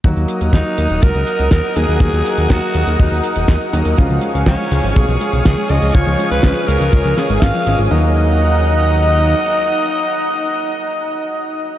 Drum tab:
HH |xxxxxxxxxxxxxxxx|xxxxxxxxxxxxxxxx|xxxxxxxxxxxxxxxx|xxxxxxxxxxxxxxxx|
SD |----o-------o---|----o-------o---|----o-------o---|----o-----o-o---|
BD |o---o---o---o---|o---o---o---o---|o---o---o---o---|o---o---o---o---|

HH |----------------|----------------|
SD |----------------|----------------|
BD |----------------|----------------|